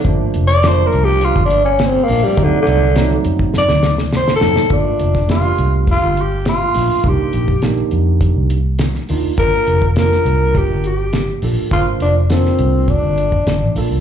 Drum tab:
HH |x-x-x-x-x-x-x-o-|x-x-x-x---------|x-x-x-x-x-x-x-o-|x-x-x-x-x-x-x-o-|
SD |----o-------o---|----o---oooooooo|---oo-------o---|----o-------oo--|
BD |o--------o------|o------o--------|o--o----o-------|o--o----o-------|

HH |x-x-x-x-x-x-x-o-|x-x-x-x-x-x-x-o-|
SD |----oo------o---|----oo------o---|
BD |o--o----o-------|o-------o--o----|